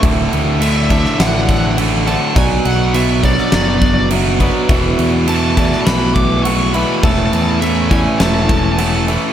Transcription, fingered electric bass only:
\new Staff \with { instrumentName = "Fingered electric bass" } { \clef bass \time 4/4 \key d \major \tempo 4 = 103 d,,8 d,4. a,,2 | b,,8 b,,4. fis,,2 | e,,8 e,4. b,,2 | e,,8 e,4. e,,2 | }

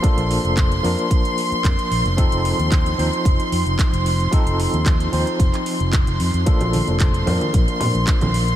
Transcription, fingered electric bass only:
\new Staff \with { instrumentName = "Fingered electric bass" } { \clef bass \time 4/4 \key bes \major \tempo 4 = 112 r16 bes,,16 r16 f,,8. f,16 r4 r16 f,16 r16 bes,,16 f,,16 | r16 f,,16 r16 ees,8. ees,16 r16 f,,16 r16 f,16 f,,16 r16 f,,8. | r16 f,,16 r16 ees,8. ees,16 r16 f,,16 r8 f,,8 f,,16 f,16 f,16 | r16 bes,,16 r16 f,,8. f,16 r16 bes,,16 r16 bes,16 bes,,16 r16 bes,,8. | }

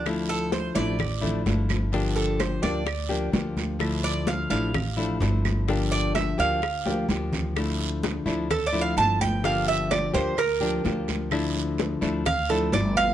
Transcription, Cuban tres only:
\new Staff \with { instrumentName = "Cuban tres" } { \time 4/4 \key d \minor \tempo 4 = 128 r8 a'8 c''8 d''4. r4 | r8 a'8 c''8 d''4. r4 | r8 d''8 f''8 f''4. r4 | r8 d''8 e''8 f''4. r4 |
r2 \tuplet 3/2 { a'8 d''8 f''8 } a''8 g''8 | f''8 e''8 d''8 c''8 bes'2 | r2 f''8 a'8 d''8 f''8 | }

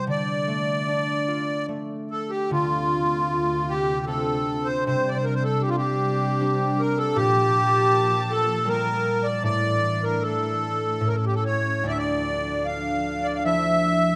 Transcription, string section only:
\new Staff \with { instrumentName = "String section" } { \clef bass \time 3/4 \key d \minor \tempo 4 = 76 << { r2. | <c f'>2. | <g d'>2. | <f a''>2. |
<e d'>2 cis'4 | <f d'>2. | } \\ { r2. | d,2. | r2. | bes,2. |
a,2. | r2. | } >> }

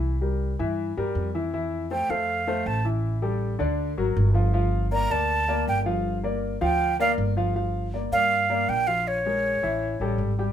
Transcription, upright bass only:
\new Staff \with { instrumentName = "Upright bass" } { \clef bass \time 4/4 \key g \dorian \tempo 4 = 160 c,4. g,4 g,8 f,4~ | f,4. f,4. a,,4~ | a,,4. d,4 aes,,8 g,,4~ | g,,4. d,4. g,,4~ |
g,,4. d,4. g,,4~ | g,,4. g,4. bes,,4~ | bes,,4. a,,4 a,,8 aes,,4 | }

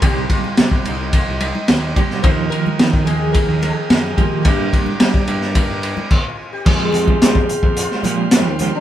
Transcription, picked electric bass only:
\new Staff \with { instrumentName = "Picked electric bass" } { \clef bass \time 4/4 \key f \dorian \tempo 4 = 109 c,8 r8 c8 c,8. c,8 r16 ees,8 r8 | ees,8 r8 ees8 ees,8. ees,8 r16 ges,8 r8 | g,8 r8 g8 g,8. g,8 r4 r16 | f,4 f,8 r16 f,8 r16 bes,8. ees,8 r16 | }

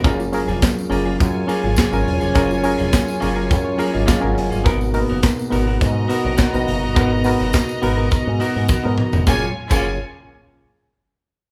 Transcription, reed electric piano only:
\new Staff \with { instrumentName = "Reed electric piano" } { \time 4/4 \key fis \major \tempo 4 = 104 << { r1 | r4. cis''16 ais'16 cis''16 cis''8 dis''16 eis''16 fis''16 gis''8 | r1 | r1 |
r1 | } \\ { <cis' eis' gis' ais'>8 <cis' eis' gis' ais'>8. r16 <cis' eis' gis' ais'>8. r16 <cis' eis' gis' ais'>8. <cis' eis' gis' ais'>8. | <cis' eis' gis' ais'>8 <cis' eis' gis' ais'>8. r16 <cis' eis' gis' ais'>8. r16 <cis' eis' gis' ais'>8. <cis' eis' gis' ais'>8. | <b dis' fis' ais'>8 <ais b dis' fis' ais'>8. r16 <b dis' fis' ais'>8. r16 <b dis' fis' ais'>8. <b dis' fis' ais'>8. | <b dis' fis' ais'>8 <b dis' fis' ais'>8. r16 <b dis' fis' ais'>8. r16 <b dis' fis' ais'>8. <b dis' fis' ais'>8. |
<cis' eis' gis' ais'>16 r8 <cis' eis' gis' ais'>8 r2 r8. | } >> }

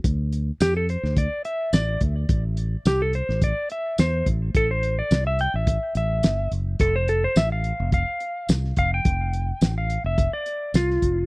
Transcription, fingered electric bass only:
\new Staff \with { instrumentName = "Fingered electric bass" } { \clef bass \time 4/4 \key a \minor \tempo 4 = 107 d,4 f,8. d,8 r8. a,,8 d,8 | a,,4 c,8. a,,8 r8. e,8 a,,8 | a,,4 c,8. a,,8 r16 a,,8 g,,8 fis,,8 | f,,4 a,,8. f,,8 r8. c,8 f,,8 |
f,,4 a,,8. f,,8 r8. c,8 f,,8 | }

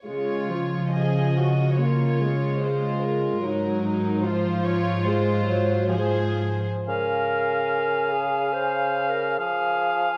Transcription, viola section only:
\new Staff \with { instrumentName = "Viola section" } { \clef bass \time 4/4 \key des \major \tempo 4 = 71 aes8 f4. bes8 aes4. | ges4 f4 aes8 ges8 f8. r16 | r1 | }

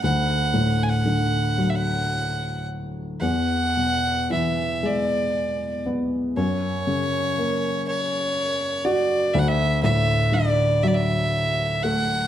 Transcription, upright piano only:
\new Staff \with { instrumentName = "Upright piano" } { \clef bass \time 6/8 \key e \mixolydian \tempo 4. = 39 d,8 a,8 d8 fis4. | e,8 b,8 e8 gis4 b8 | fis,8 cis8 ais4. fis'8 | d,8 a,8 d8 fis4 a8 | }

